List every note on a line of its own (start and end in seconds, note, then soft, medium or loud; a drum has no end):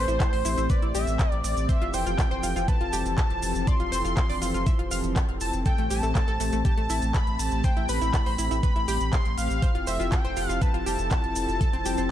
0.00 1.65 A3 medium
0.00 9.58 C4 medium
0.00 5.62 G4 loud
0.00 0.66 C5 medium
0.00 0.71 C5 loud
0.08 0.18 A1 medium
0.08 0.16 E4 medium
0.08 closed hi-hat soft
0.08 cabasa medium
0.20 0.29 E4 medium
0.20 kick loud
0.20 clap loud
0.20 closed hi-hat medium
0.20 cabasa soft
0.33 0.43 A1 medium
0.33 0.41 C5 loud
0.33 open hi-hat medium
0.45 0.56 A1 loud
0.45 0.53 E4 medium
0.45 open hi-hat loud
0.45 cabasa loud
0.58 0.68 A1 medium
0.58 0.66 E4 medium
0.58 closed hi-hat soft
0.58 cabasa medium
0.70 0.78 B4 medium
0.70 0.93 D5 loud
0.70 0.94 D5 loud
0.70 kick loud
0.70 closed hi-hat medium
0.70 cabasa soft
0.82 0.93 A1 medium
0.82 0.91 E4 medium
0.82 closed hi-hat soft
0.95 1.05 A1 loud
0.95 1.59 G4 loud
0.95 1.32 E5 loud
0.95 1.41 E5 loud
0.95 open hi-hat loud
0.95 cabasa loud
1.07 1.17 A1 medium
1.07 closed hi-hat soft
1.07 cabasa medium
1.19 kick loud
1.19 clap loud
1.19 closed hi-hat medium
1.19 cabasa soft
1.32 1.42 A1 medium
1.32 1.44 D5 loud
1.32 closed hi-hat soft
1.44 1.55 A1 loud
1.44 1.68 D5 medium
1.44 1.67 D5 medium
1.44 open hi-hat loud
1.44 cabasa medium
1.57 1.67 A1 medium
1.57 closed hi-hat soft
1.57 cabasa medium
1.69 5.62 E3 medium
1.69 5.62 F3 medium
1.69 5.62 A4 loud
1.69 1.77 C5 loud
1.69 1.92 E5 loud
1.69 1.95 E5 loud
1.69 kick loud
1.69 closed hi-hat medium
1.69 cabasa soft
1.82 1.92 F1 medium
1.82 1.90 F4 medium
1.82 closed hi-hat soft
1.94 2.04 F1 loud
1.94 2.02 C5 medium
1.94 2.67 G5 loud
1.94 2.64 G5 loud
1.94 open hi-hat loud
1.94 cabasa loud
2.06 2.17 F1 medium
2.06 2.14 F4 medium
2.06 closed hi-hat soft
2.06 cabasa medium
2.19 2.27 F4 medium
2.19 kick loud
2.19 clap loud
2.19 closed hi-hat medium
2.19 cabasa soft
2.31 2.41 F1 medium
2.31 2.39 C5 loud
2.31 closed hi-hat soft
2.43 2.54 F1 loud
2.43 2.52 F4 medium
2.43 open hi-hat loud
2.43 cabasa loud
2.56 2.66 F1 medium
2.56 2.64 F4 medium
2.56 closed hi-hat soft
2.56 cabasa medium
2.68 2.76 B4 medium
2.68 3.14 A5 loud
2.68 kick loud
2.68 closed hi-hat medium
2.68 cabasa soft
2.81 2.91 F1 medium
2.81 2.89 F4 medium
2.81 closed hi-hat soft
2.93 3.04 F1 loud
2.93 3.58 G4 loud
2.93 open hi-hat loud
2.93 cabasa loud
3.06 3.16 F1 medium
3.06 closed hi-hat soft
3.06 cabasa medium
3.17 3.69 A5 loud
3.17 3.64 A5 loud
3.17 kick loud
3.17 clap loud
3.17 closed hi-hat medium
3.17 cabasa soft
3.30 3.41 F1 medium
3.30 closed hi-hat soft
3.42 3.53 F1 loud
3.42 open hi-hat loud
3.42 cabasa loud
3.55 3.65 F1 medium
3.55 closed hi-hat soft
3.55 cabasa medium
3.67 3.76 D5 loud
3.67 5.16 C6 loud
3.67 5.12 C6 loud
3.67 kick loud
3.67 closed hi-hat medium
3.67 cabasa soft
3.80 3.90 F1 medium
3.80 3.88 F4 medium
3.80 closed hi-hat soft
3.92 4.03 F1 loud
3.92 4.00 C5 loud
3.92 open hi-hat loud
3.92 cabasa loud
4.05 4.15 F1 medium
4.05 4.13 F4 medium
4.05 closed hi-hat soft
4.05 cabasa medium
4.16 4.25 F4 medium
4.16 kick loud
4.16 clap loud
4.16 closed hi-hat medium
4.16 cabasa soft
4.30 4.40 F1 medium
4.30 4.38 D5 loud
4.30 open hi-hat medium
4.42 4.52 F1 loud
4.42 4.50 F4 medium
4.42 open hi-hat loud
4.42 cabasa medium
4.54 4.65 F1 medium
4.54 4.62 F4 medium
4.54 closed hi-hat soft
4.54 cabasa medium
4.66 4.75 E5 medium
4.66 kick loud
4.66 closed hi-hat medium
4.66 cabasa soft
4.79 4.89 F1 medium
4.79 4.87 F4 medium
4.79 closed hi-hat soft
4.91 5.02 F1 loud
4.91 5.56 F5 loud
4.91 open hi-hat loud
4.91 cabasa loud
5.04 5.14 F1 medium
5.04 closed hi-hat soft
5.04 cabasa soft
5.16 kick loud
5.16 clap loud
5.16 closed hi-hat medium
5.16 cabasa soft
5.29 5.39 F1 medium
5.29 closed hi-hat soft
5.41 5.51 F1 loud
5.41 5.52 A5 medium
5.41 open hi-hat loud
5.41 cabasa medium
5.53 5.64 F1 medium
5.53 closed hi-hat soft
5.53 cabasa medium
5.65 9.58 A3 medium
5.65 12.11 G4 loud
5.65 5.74 A4 loud
5.65 5.89 G5 loud
5.65 kick loud
5.65 closed hi-hat medium
5.65 cabasa soft
5.78 5.89 A1 medium
5.78 5.86 A3 medium
5.78 closed hi-hat soft
5.90 6.01 A1 loud
5.90 5.99 G4 loud
5.90 6.61 A5 loud
5.90 open hi-hat loud
5.90 cabasa medium
6.03 6.13 A1 medium
6.03 6.11 A3 medium
6.03 closed hi-hat soft
6.03 cabasa soft
6.15 6.24 A3 medium
6.15 kick loud
6.15 clap loud
6.15 closed hi-hat medium
6.15 cabasa soft
6.28 6.38 A1 medium
6.28 6.36 A4 medium
6.28 closed hi-hat soft
6.40 6.51 A1 loud
6.40 6.48 A3 medium
6.40 open hi-hat loud
6.40 cabasa loud
6.52 6.63 A1 medium
6.52 6.61 A3 medium
6.52 closed hi-hat soft
6.52 cabasa medium
6.65 6.73 G4 medium
6.65 7.16 A5 loud
6.65 7.11 A5 loud
6.65 kick loud
6.65 closed hi-hat medium
6.65 cabasa soft
6.78 6.88 A1 medium
6.78 6.86 A3 medium
6.78 closed hi-hat soft
6.90 7.00 A1 loud
6.90 7.54 E4 medium
6.90 open hi-hat loud
6.90 cabasa loud
7.02 7.12 A1 medium
7.02 closed hi-hat soft
7.02 cabasa medium
7.14 7.41 B5 loud
7.14 7.38 B5 loud
7.14 kick loud
7.14 clap loud
7.14 closed hi-hat medium
7.14 cabasa soft
7.27 7.37 A1 medium
7.27 closed hi-hat soft
7.39 7.50 A1 loud
7.39 7.66 A5 loud
7.39 7.62 A5 loud
7.39 open hi-hat loud
7.39 cabasa loud
7.51 7.62 A1 medium
7.51 closed hi-hat soft
7.51 cabasa medium
7.64 7.72 C5 loud
7.64 7.87 G5 loud
7.64 7.88 G5 loud
7.64 kick loud
7.64 closed hi-hat medium
7.64 cabasa soft
7.77 7.87 A1 medium
7.77 7.85 E4 medium
7.77 closed hi-hat soft
7.89 7.99 A1 loud
7.89 7.97 B4 medium
7.89 8.59 B5 loud
7.89 open hi-hat loud
7.89 cabasa medium
8.02 8.12 A1 medium
8.02 8.10 E4 medium
8.02 closed hi-hat soft
8.02 cabasa medium
8.14 8.22 E4 medium
8.14 kick loud
8.14 clap loud
8.14 closed hi-hat medium
8.14 cabasa soft
8.26 8.37 A1 medium
8.26 8.34 C5 loud
8.26 open hi-hat medium
8.38 8.49 A1 loud
8.38 8.47 E4 medium
8.38 open hi-hat loud
8.38 cabasa medium
8.51 8.61 A1 medium
8.51 8.59 E4 medium
8.51 closed hi-hat soft
8.51 cabasa medium
8.63 8.72 B4 medium
8.63 9.14 B5 loud
8.63 9.09 B5 loud
8.63 kick loud
8.63 closed hi-hat medium
8.63 cabasa soft
8.76 8.86 A1 medium
8.76 8.84 E4 medium
8.76 closed hi-hat soft
8.88 8.99 A1 loud
8.88 9.53 G4 loud
8.88 open hi-hat loud
8.88 cabasa medium
9.01 9.11 A1 medium
9.01 closed hi-hat soft
9.01 cabasa soft
9.13 9.37 C6 loud
9.13 9.36 C6 loud
9.13 kick loud
9.13 clap loud
9.13 closed hi-hat medium
9.13 cabasa soft
9.25 9.36 A1 medium
9.25 closed hi-hat soft
9.38 9.48 A1 loud
9.38 9.84 F5 loud
9.38 9.89 F5 loud
9.38 open hi-hat loud
9.38 cabasa medium
9.50 9.60 A1 medium
9.50 closed hi-hat soft
9.50 cabasa medium
9.62 12.11 F3 medium
9.62 12.11 C4 medium
9.62 12.11 E4 medium
9.62 12.11 A4 loud
9.62 9.71 C5 loud
9.62 kick loud
9.62 closed hi-hat loud
9.62 cabasa soft
9.75 9.85 F1 medium
9.75 9.83 F4 medium
9.75 closed hi-hat soft
9.87 9.98 F1 loud
9.87 9.95 C5 loud
9.87 10.10 E5 loud
9.87 10.11 E5 loud
9.87 open hi-hat loud
9.87 cabasa medium
10.00 10.10 F1 medium
10.00 10.08 F4 medium
10.00 closed hi-hat soft
10.00 cabasa medium
10.12 10.20 F4 medium
10.12 10.58 G5 loud
10.12 10.49 G5 loud
10.12 kick loud
10.12 clap loud
10.12 closed hi-hat loud
10.12 cabasa soft
10.25 10.35 F1 medium
10.25 10.33 C5 loud
10.25 closed hi-hat soft
10.37 10.47 F1 loud
10.37 10.45 F4 medium
10.37 open hi-hat loud
10.37 cabasa medium
10.49 10.60 F1 medium
10.49 10.57 F4 medium
10.49 10.63 F5 loud
10.49 closed hi-hat soft
10.49 cabasa medium
10.62 10.70 B4 medium
10.62 12.11 A5 loud
10.62 kick loud
10.62 closed hi-hat medium
10.62 cabasa soft
10.74 10.84 F1 medium
10.74 10.82 F4 medium
10.74 closed hi-hat soft
10.86 10.97 F1 loud
10.86 11.51 G4 loud
10.86 open hi-hat loud
10.86 cabasa medium
10.99 11.09 F1 medium
10.99 closed hi-hat soft
10.99 cabasa medium
11.10 kick loud
11.10 clap loud
11.10 closed hi-hat medium
11.10 cabasa soft
11.24 11.34 F1 medium
11.24 closed hi-hat soft
11.36 11.47 F1 loud
11.36 open hi-hat loud
11.36 cabasa medium
11.49 11.59 F1 medium
11.49 closed hi-hat soft
11.49 cabasa soft
11.61 11.69 A4 loud
11.61 kick loud
11.61 closed hi-hat loud
11.61 cabasa soft
11.73 11.84 F1 medium
11.73 11.81 C4 medium
11.73 closed hi-hat soft
11.86 11.96 F1 loud
11.86 11.94 G4 medium
11.86 open hi-hat loud
11.86 cabasa loud
11.97 12.08 F1 medium
11.97 12.06 C4 medium
11.97 closed hi-hat soft
11.97 cabasa soft